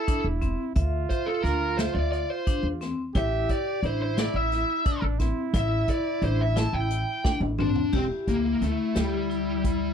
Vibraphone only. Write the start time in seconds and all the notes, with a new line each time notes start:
0.07 D4
0.41 C4
0.76 E5
1.44 D4
1.78 E5
2.47 D4
2.81 C4
3.15 E4
3.83 D4
4.17 E4
4.86 D4
5.20 C4
5.54 E4
6.22 D4
6.56 E4
7.24 D4
7.59 C4
7.93 G4
8.62 E4
8.95 G4
9.30 E4